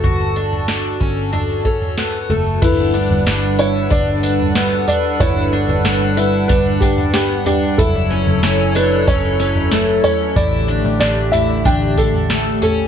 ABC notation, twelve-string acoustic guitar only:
X:1
M:4/4
L:1/8
Q:1/4=93
K:Glyd
V:1 name="Twelve-string acoustic guitar"
F D D C D C B, A, | E D D E D D B, D | E D D E D D B, D | E C C D C C A, C |
E D D E D D A, C |]